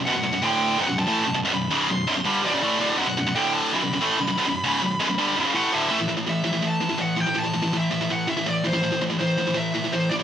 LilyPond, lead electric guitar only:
\new Staff \with { instrumentName = "Lead electric guitar" } { \time 4/4 \key a \dorian \tempo 4 = 164 fis''4 g''4 fis''8 a''4 r8 | b''4 c'''4 b''8 d''4. | fis''4 g''8 a''8 b''2~ | b''2. fis''8 e''8~ |
e''8 r8 e''4 a''4 fis''8 g''8 | a''4 e''4 fis''8 e''8 d''8 c''8~ | c''8 r8 c''4 e''4 c''8 d''8 | }